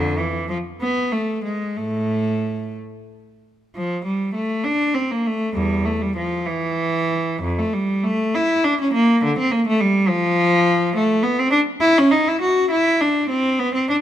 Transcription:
0.00 0.16 F2 medium
0.00 0.18 D3 medium
0.18 0.49 E3 medium
0.49 0.57 F3 medium
0.81 1.12 B3 medium
1.12 1.44 A3 medium
1.45 1.77 G#3 medium
1.77 2.72 A2 soft
1.77 2.76 A3 medium
3.75 4.04 F3 medium
4.05 4.35 G3 medium
4.34 4.65 A3 medium
4.64 4.95 D4 medium
4.94 5.11 C4 medium
5.11 5.27 A#3 medium
5.27 5.57 A3 medium
5.55 5.84 E2 medium
5.55 5.86 G3 medium
5.85 6.01 A3 medium
6.02 6.17 G3 medium
6.17 6.47 F3 medium
6.46 7.43 E3 medium
7.42 7.58 F2 medium
7.59 7.74 A3 medium
7.74 8.04 G3 medium
8.04 8.34 A3 medium
8.35 8.64 E4 medium
8.64 8.79 D4 medium
8.81 8.94 C#4 medium
8.94 9.22 A#3 medium
9.24 9.37 D3 medium
9.39 9.52 C4 medium
9.52 9.66 A#3 medium
9.67 9.81 A3 medium
9.81 10.10 G3 medium
10.09 10.96 F3 loud
10.96 11.24 A3 medium
11.23 11.38 B3 medium
11.39 11.54 C4 medium
11.51 11.59 D4 medium
11.81 11.96 E4 loud
11.98 12.12 C#4 medium
12.11 12.26 D#4 medium
12.28 12.42 E4 medium
12.41 12.70 F#4 medium
12.71 12.99 E4 medium
13.00 13.30 D4 medium
13.30 13.59 C4 medium
13.59 13.75 B3 medium
13.75 13.90 C4 medium
13.89 13.95 D4 medium

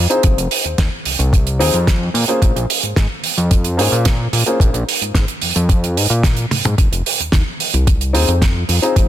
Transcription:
0.10 0.36 C4 medium
0.10 0.36 D#4 medium
0.10 0.36 F4 medium
0.10 0.36 G#4 medium
0.10 0.36 C5 medium
0.10 closed hi-hat medium
0.23 0.34 F1 loud
0.23 kick loud
0.23 closed hi-hat medium
0.37 0.48 F1 loud
0.37 closed hi-hat medium
0.51 open hi-hat loud
0.65 0.76 D#2 soft
0.65 closed hi-hat medium
0.78 0.89 D#2 medium
0.78 kick loud
0.78 snare loud
0.78 closed hi-hat medium
1.05 1.17 C2 soft
1.05 open hi-hat medium
1.19 1.61 C2 medium
1.19 closed hi-hat medium
1.33 kick loud
1.33 closed hi-hat medium
1.47 closed hi-hat medium
1.59 1.71 D#2 loud
1.59 1.76 C4 medium
1.59 1.76 D#4 medium
1.59 1.76 F4 medium
1.59 1.76 G#4 medium
1.59 1.77 C5 medium
1.59 open hi-hat loud
1.74 2.10 F2 loud
1.74 closed hi-hat medium
1.87 kick loud
1.87 snare loud
1.87 closed hi-hat medium
2.14 2.25 A#2 medium
2.14 open hi-hat medium
2.28 2.54 A#3 medium
2.28 2.54 C#4 medium
2.28 2.54 F4 medium
2.28 2.54 G#4 medium
2.28 2.54 C5 medium
2.28 closed hi-hat medium
2.42 2.52 A#1 loud
2.42 kick loud
2.42 closed hi-hat medium
2.56 2.66 A#1 medium
2.56 closed hi-hat medium
2.70 open hi-hat loud
2.83 2.94 G#2 soft
2.83 closed hi-hat medium
2.96 3.07 G#2 medium
2.96 kick loud
2.96 snare loud
2.96 closed hi-hat medium
3.24 open hi-hat medium
3.38 3.80 F2 medium
3.38 closed hi-hat medium
3.51 kick loud
3.51 closed hi-hat loud
3.64 closed hi-hat soft
3.77 3.89 G#2 loud
3.77 3.94 A#3 medium
3.77 3.94 C#4 medium
3.77 3.94 F4 medium
3.77 3.94 G#4 medium
3.77 3.95 C5 loud
3.77 open hi-hat loud
3.92 4.28 A#2 loud
3.92 closed hi-hat medium
4.05 kick loud
4.05 snare loud
4.05 closed hi-hat loud
4.33 4.43 A#2 loud
4.33 open hi-hat loud
4.46 4.72 A#3 medium
4.46 4.72 C#4 medium
4.46 4.72 F4 medium
4.46 4.72 G#4 medium
4.46 4.73 C5 medium
4.46 closed hi-hat medium
4.60 4.71 A#1 loud
4.60 kick loud
4.60 closed hi-hat medium
4.74 4.84 A#1 loud
4.74 closed hi-hat medium
4.89 open hi-hat loud
5.01 5.12 G#2 soft
5.01 closed hi-hat medium
5.15 5.25 G#2 medium
5.15 kick loud
5.15 snare loud
5.15 closed hi-hat medium
5.28 closed hi-hat medium
5.42 5.53 F2 soft
5.42 open hi-hat medium
5.56 5.98 F2 medium
5.56 closed hi-hat medium
5.69 kick loud
5.69 closed hi-hat medium
5.84 closed hi-hat medium
5.96 6.07 G#2 loud
5.96 open hi-hat loud
6.10 6.46 A#2 loud
6.10 closed hi-hat medium
6.23 kick loud
6.23 snare loud
6.23 closed hi-hat loud
6.37 closed hi-hat medium
6.51 6.62 G#2 soft
6.51 open hi-hat medium
6.51 high tom medium
6.65 6.75 G#2 medium
6.65 closed hi-hat medium
6.65 mid tom medium
6.78 6.89 F1 loud
6.78 kick loud
6.78 closed hi-hat medium
6.92 7.02 F1 loud
6.92 closed hi-hat medium
7.06 open hi-hat loud
7.20 7.30 D#2 soft
7.20 closed hi-hat medium
7.32 7.43 D#2 medium
7.32 kick loud
7.32 snare loud
7.32 closed hi-hat medium
7.60 open hi-hat medium
7.74 8.16 C2 medium
7.74 closed hi-hat medium
7.87 kick loud
7.87 closed hi-hat medium
8.01 closed hi-hat medium
8.13 8.25 D#2 loud
8.13 8.30 C4 medium
8.13 8.30 D#4 medium
8.13 8.31 F4 medium
8.13 8.31 G#4 medium
8.13 8.31 C5 loud
8.13 open hi-hat loud
8.28 8.64 F2 loud
8.28 closed hi-hat medium
8.42 kick loud
8.42 snare loud
8.42 closed hi-hat medium
8.69 8.80 F2 loud
8.69 open hi-hat loud
8.82 9.08 C4 medium
8.82 9.08 D#4 medium
8.82 9.08 F4 medium
8.82 9.08 G#4 medium
8.82 9.08 C5 medium
8.82 closed hi-hat medium
8.96 9.07 F1 loud
8.96 kick loud
8.96 closed hi-hat medium

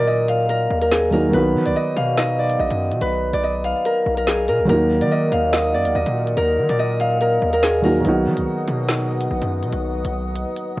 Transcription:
0.00 0.68 A#2 loud
0.00 1.06 D#3 medium
0.00 1.07 F#3 medium
0.00 1.08 A#3 medium
0.00 1.10 D#4 medium
0.00 1.11 F#4 medium
0.00 0.49 A#4 loud
0.00 0.14 D5 medium
0.00 0.27 F5 medium
0.08 1.72 D#5 medium
0.29 1.95 F5 medium
0.29 closed hi-hat medium
0.49 0.81 A#4 medium
0.49 closed hi-hat medium
0.70 1.31 D#2 loud
0.82 1.12 A#4 medium
0.82 closed hi-hat medium
0.92 3.19 G#4 medium
0.92 snare loud
0.92 closed hi-hat medium
1.11 1.27 D#3 medium
1.11 1.29 F#3 soft
1.11 1.34 A#3 soft
1.11 1.34 D#4 soft
1.11 1.40 A#4 medium
1.11 open hi-hat medium
1.15 1.35 F#4 medium
1.29 4.63 D#3 medium
1.29 4.64 F#3 medium
1.33 1.56 B1 loud
1.33 4.65 B3 medium
1.33 4.66 D#4 medium
1.33 3.01 B4 loud
1.33 closed hi-hat medium
1.37 4.67 F#4 medium
1.54 1.67 F#3 loud
1.65 1.75 B1 loud
1.65 1.82 D5 medium
1.65 closed hi-hat medium
1.76 2.17 D#5 medium
1.96 2.57 B2 loud
1.96 3.63 F5 medium
1.96 closed hi-hat medium
2.17 2.45 D#5 loud
2.17 snare loud
2.39 2.66 D5 medium
2.49 closed hi-hat medium
2.59 2.70 A#1 loud
2.59 3.40 D#5 medium
2.70 2.93 F#2 loud
2.70 closed hi-hat medium
2.91 3.01 B2 loud
2.91 closed hi-hat medium
3.01 3.32 B1 loud
3.01 3.92 B4 loud
3.01 closed hi-hat medium
3.33 3.74 B1 loud
3.33 3.50 D5 medium
3.33 closed hi-hat medium
3.44 5.07 D#5 medium
3.64 5.31 F5 medium
3.64 closed hi-hat medium
3.85 4.17 A#4 medium
3.85 closed hi-hat medium
4.06 4.50 B1 loud
4.17 4.48 A#4 medium
4.17 closed hi-hat medium
4.27 6.55 G#4 medium
4.27 snare loud
4.27 closed hi-hat medium
4.48 4.61 B2 loud
4.48 4.69 A#4 medium
4.48 closed hi-hat medium
4.59 4.69 B1 loud
4.65 7.78 D#3 medium
4.65 7.79 F#3 medium
4.69 5.03 D#2 loud
4.69 7.80 A#3 medium
4.69 7.81 D#4 medium
4.69 8.01 A#4 medium
4.69 6.37 A#4 loud
4.69 10.80 D#5 medium
4.69 8.01 F#5 medium
4.69 10.80 D#6 medium
4.69 closed hi-hat medium
4.73 7.82 F#4 medium
5.01 5.31 D#3 loud
5.01 5.17 D5 medium
5.01 closed hi-hat medium
5.11 5.53 D#5 medium
5.32 5.76 D#2 loud
5.32 6.99 F5 medium
5.32 closed hi-hat medium
5.53 5.80 D#5 medium
5.53 snare loud
5.74 5.87 F#2 medium
5.74 6.01 D5 medium
5.85 5.95 D#2 loud
5.85 closed hi-hat medium
5.95 6.06 D#2 loud
5.95 6.75 D#5 medium
6.06 6.36 A#2 loud
6.06 closed hi-hat medium
6.27 closed hi-hat medium
6.37 6.59 D#2 loud
6.37 7.21 A#4 loud
6.37 closed hi-hat medium
6.58 6.69 D#3 loud
6.69 7.39 A#2 loud
6.69 6.85 D5 medium
6.69 closed hi-hat medium
6.79 8.57 D#5 medium
7.00 8.67 F5 medium
7.00 closed hi-hat medium
7.21 7.53 A#4 medium
7.21 closed hi-hat medium
7.42 8.02 D#2 loud
7.53 7.84 A#4 medium
7.53 closed hi-hat medium
7.63 9.90 G#4 medium
7.63 snare loud
7.63 closed hi-hat medium
7.82 7.99 D#3 medium
7.82 8.01 F#3 soft
7.82 8.05 A#3 soft
7.82 8.05 D#4 soft
7.82 9.96 A#4 medium
7.82 open hi-hat medium
7.86 8.06 F#4 medium
8.00 10.80 D#3 medium
8.00 10.80 F#3 medium
8.04 8.27 B1 loud
8.04 10.80 B3 medium
8.04 10.80 D#4 medium
8.04 10.80 B4 medium
8.04 10.80 F#5 medium
8.04 closed hi-hat medium
8.09 10.80 F#4 medium
8.26 8.38 F#3 loud
8.37 8.46 B1 loud
8.37 closed hi-hat medium
8.68 9.28 B2 loud
8.68 closed hi-hat medium
8.89 snare loud
9.21 closed hi-hat medium
9.31 9.41 A#1 loud
9.42 9.64 F#2 loud
9.42 closed hi-hat medium
9.63 9.72 B2 loud
9.63 closed hi-hat medium
9.73 10.03 B1 loud
9.73 closed hi-hat medium
10.05 10.45 B1 loud
10.05 closed hi-hat medium
10.36 closed hi-hat medium
10.57 closed hi-hat medium

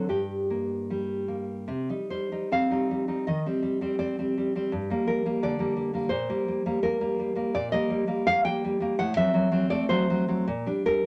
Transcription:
0.09 1.65 G2 soft
0.09 0.86 G4 medium
0.50 1.27 A#3 soft
0.90 1.70 G3 soft
1.28 1.69 A#3 soft
1.68 1.88 C3 medium
1.89 2.10 G3 soft
1.89 2.31 D#4 soft
2.10 2.31 G3 soft
2.10 2.49 C5 medium
2.32 2.69 G3 soft
2.32 2.70 D#4 soft
2.52 3.26 C4 soft
2.52 3.24 F5 medium
2.70 2.90 G3 soft
2.70 3.07 D#4 soft
2.91 3.06 G3 soft
3.08 3.24 G3 soft
3.08 3.24 D#4 soft
3.27 3.45 D#3 medium
3.27 3.97 D#5 medium
3.46 3.61 G3 soft
3.46 3.81 C4 soft
3.63 3.80 G3 soft
3.81 4.18 G3 soft
3.81 3.98 C4 soft
3.99 4.18 C4 soft
3.99 4.69 D5 medium
4.19 4.36 G3 soft
4.19 4.55 C4 soft
4.38 4.54 G3 soft
4.55 4.71 G3 soft
4.55 4.71 C4 soft
4.72 4.89 G2 medium
4.90 5.07 G3 soft
4.90 5.25 A#3 soft
5.07 5.24 G3 soft
5.07 5.42 A#4 medium
5.25 5.58 G3 soft
5.25 5.59 A#3 soft
5.43 6.10 D3 soft
5.43 6.09 D5 medium
5.59 5.75 G3 soft
5.59 5.93 A#3 soft
5.76 5.92 G3 medium
5.93 6.10 G3 soft
5.93 6.11 A#3 soft
6.09 6.28 A#2 medium
6.09 6.78 C5 medium
6.30 6.47 G3 soft
6.30 6.65 A#3 soft
6.48 6.65 G3 soft
6.66 7.00 G3 soft
6.66 6.82 A#3 medium
6.83 7.00 A#3 medium
6.83 7.52 A#4 medium
7.01 7.18 G3 soft
7.01 7.35 A#3 medium
7.19 7.34 G3 medium
7.35 7.53 G3 soft
7.35 7.53 A#3 soft
7.54 7.73 A#2 medium
7.54 7.72 D5 medium
7.72 7.89 G3 soft
7.72 8.07 A#3 medium
7.72 8.25 D#5 medium
7.90 8.06 G3 medium
8.07 8.45 G3 soft
8.07 8.27 A#3 medium
8.27 8.45 A#3 medium
8.27 8.44 F5 loud
8.45 8.63 G3 medium
8.45 8.81 A#3 medium
8.45 8.97 G5 loud
8.65 8.79 G3 medium
8.80 8.97 G3 medium
8.80 8.98 A#3 medium
8.99 9.17 A2 medium
8.99 9.17 F#5 loud
9.17 9.33 F#3 medium
9.17 9.51 C4 medium
9.17 9.70 E5 medium
9.34 9.50 F#3 medium
9.51 9.69 F#3 medium
9.51 9.89 C4 medium
9.70 10.47 A3 medium
9.70 9.89 D5 loud
9.89 10.09 F#3 medium
9.89 10.27 C4 medium
9.89 10.44 C5 medium
10.10 10.27 F#3 medium
10.28 10.46 F#3 medium
10.28 10.46 C4 medium
10.47 10.66 A#2 medium
10.66 10.85 G3 soft
10.66 11.04 D4 medium
10.86 11.04 G3 medium
10.86 11.06 A#4 medium

